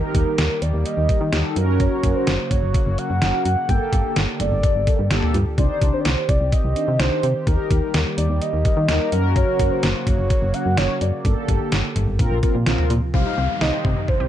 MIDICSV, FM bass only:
0, 0, Header, 1, 2, 480
1, 0, Start_track
1, 0, Tempo, 472441
1, 1829, Time_signature, 4, 2, 24, 8
1, 14513, End_track
2, 0, Start_track
2, 0, Title_t, "FM bass"
2, 0, Program_c, 0, 39
2, 148, Note_on_c, 0, 39, 104
2, 257, Note_off_c, 0, 39, 0
2, 389, Note_on_c, 0, 39, 100
2, 498, Note_off_c, 0, 39, 0
2, 630, Note_on_c, 0, 39, 103
2, 738, Note_off_c, 0, 39, 0
2, 750, Note_on_c, 0, 39, 97
2, 858, Note_off_c, 0, 39, 0
2, 989, Note_on_c, 0, 39, 104
2, 1098, Note_off_c, 0, 39, 0
2, 1228, Note_on_c, 0, 51, 104
2, 1337, Note_off_c, 0, 51, 0
2, 1348, Note_on_c, 0, 39, 100
2, 1457, Note_off_c, 0, 39, 0
2, 1588, Note_on_c, 0, 42, 102
2, 1914, Note_off_c, 0, 42, 0
2, 2068, Note_on_c, 0, 30, 101
2, 2177, Note_off_c, 0, 30, 0
2, 2310, Note_on_c, 0, 30, 98
2, 2418, Note_off_c, 0, 30, 0
2, 2549, Note_on_c, 0, 30, 97
2, 2658, Note_off_c, 0, 30, 0
2, 2669, Note_on_c, 0, 30, 105
2, 2778, Note_off_c, 0, 30, 0
2, 2910, Note_on_c, 0, 30, 112
2, 3018, Note_off_c, 0, 30, 0
2, 3150, Note_on_c, 0, 42, 102
2, 3258, Note_off_c, 0, 42, 0
2, 3269, Note_on_c, 0, 30, 96
2, 3378, Note_off_c, 0, 30, 0
2, 3509, Note_on_c, 0, 42, 99
2, 3618, Note_off_c, 0, 42, 0
2, 3749, Note_on_c, 0, 31, 109
2, 3858, Note_off_c, 0, 31, 0
2, 3989, Note_on_c, 0, 31, 101
2, 4098, Note_off_c, 0, 31, 0
2, 4230, Note_on_c, 0, 31, 105
2, 4338, Note_off_c, 0, 31, 0
2, 4471, Note_on_c, 0, 31, 97
2, 4579, Note_off_c, 0, 31, 0
2, 4590, Note_on_c, 0, 31, 98
2, 4698, Note_off_c, 0, 31, 0
2, 4830, Note_on_c, 0, 31, 101
2, 4938, Note_off_c, 0, 31, 0
2, 5070, Note_on_c, 0, 43, 93
2, 5178, Note_off_c, 0, 43, 0
2, 5190, Note_on_c, 0, 31, 101
2, 5298, Note_off_c, 0, 31, 0
2, 5430, Note_on_c, 0, 43, 100
2, 5539, Note_off_c, 0, 43, 0
2, 5669, Note_on_c, 0, 36, 114
2, 5778, Note_off_c, 0, 36, 0
2, 5909, Note_on_c, 0, 36, 98
2, 6018, Note_off_c, 0, 36, 0
2, 6150, Note_on_c, 0, 36, 105
2, 6258, Note_off_c, 0, 36, 0
2, 6390, Note_on_c, 0, 36, 101
2, 6498, Note_off_c, 0, 36, 0
2, 6510, Note_on_c, 0, 36, 96
2, 6618, Note_off_c, 0, 36, 0
2, 6749, Note_on_c, 0, 36, 101
2, 6858, Note_off_c, 0, 36, 0
2, 6991, Note_on_c, 0, 48, 100
2, 7099, Note_off_c, 0, 48, 0
2, 7110, Note_on_c, 0, 36, 105
2, 7218, Note_off_c, 0, 36, 0
2, 7349, Note_on_c, 0, 48, 100
2, 7458, Note_off_c, 0, 48, 0
2, 7589, Note_on_c, 0, 39, 111
2, 7698, Note_off_c, 0, 39, 0
2, 7829, Note_on_c, 0, 39, 101
2, 7938, Note_off_c, 0, 39, 0
2, 8069, Note_on_c, 0, 39, 98
2, 8178, Note_off_c, 0, 39, 0
2, 8309, Note_on_c, 0, 39, 103
2, 8418, Note_off_c, 0, 39, 0
2, 8428, Note_on_c, 0, 39, 98
2, 8537, Note_off_c, 0, 39, 0
2, 8670, Note_on_c, 0, 39, 105
2, 8778, Note_off_c, 0, 39, 0
2, 8909, Note_on_c, 0, 51, 102
2, 9018, Note_off_c, 0, 51, 0
2, 9030, Note_on_c, 0, 39, 99
2, 9138, Note_off_c, 0, 39, 0
2, 9269, Note_on_c, 0, 42, 104
2, 9595, Note_off_c, 0, 42, 0
2, 9748, Note_on_c, 0, 30, 102
2, 9857, Note_off_c, 0, 30, 0
2, 9988, Note_on_c, 0, 30, 101
2, 10097, Note_off_c, 0, 30, 0
2, 10229, Note_on_c, 0, 30, 99
2, 10337, Note_off_c, 0, 30, 0
2, 10348, Note_on_c, 0, 30, 105
2, 10457, Note_off_c, 0, 30, 0
2, 10588, Note_on_c, 0, 30, 110
2, 10697, Note_off_c, 0, 30, 0
2, 10829, Note_on_c, 0, 42, 100
2, 10937, Note_off_c, 0, 42, 0
2, 10949, Note_on_c, 0, 30, 97
2, 11058, Note_off_c, 0, 30, 0
2, 11189, Note_on_c, 0, 42, 97
2, 11298, Note_off_c, 0, 42, 0
2, 11429, Note_on_c, 0, 31, 112
2, 11538, Note_off_c, 0, 31, 0
2, 11669, Note_on_c, 0, 31, 104
2, 11778, Note_off_c, 0, 31, 0
2, 11909, Note_on_c, 0, 31, 101
2, 12018, Note_off_c, 0, 31, 0
2, 12149, Note_on_c, 0, 31, 94
2, 12258, Note_off_c, 0, 31, 0
2, 12269, Note_on_c, 0, 31, 96
2, 12377, Note_off_c, 0, 31, 0
2, 12388, Note_on_c, 0, 34, 104
2, 12497, Note_off_c, 0, 34, 0
2, 12508, Note_on_c, 0, 34, 103
2, 12617, Note_off_c, 0, 34, 0
2, 12750, Note_on_c, 0, 46, 97
2, 12858, Note_off_c, 0, 46, 0
2, 12869, Note_on_c, 0, 34, 102
2, 12978, Note_off_c, 0, 34, 0
2, 13108, Note_on_c, 0, 46, 108
2, 13217, Note_off_c, 0, 46, 0
2, 13349, Note_on_c, 0, 36, 112
2, 13458, Note_off_c, 0, 36, 0
2, 13590, Note_on_c, 0, 36, 104
2, 13698, Note_off_c, 0, 36, 0
2, 13829, Note_on_c, 0, 36, 107
2, 13938, Note_off_c, 0, 36, 0
2, 14069, Note_on_c, 0, 48, 95
2, 14178, Note_off_c, 0, 48, 0
2, 14429, Note_on_c, 0, 36, 97
2, 14513, Note_off_c, 0, 36, 0
2, 14513, End_track
0, 0, End_of_file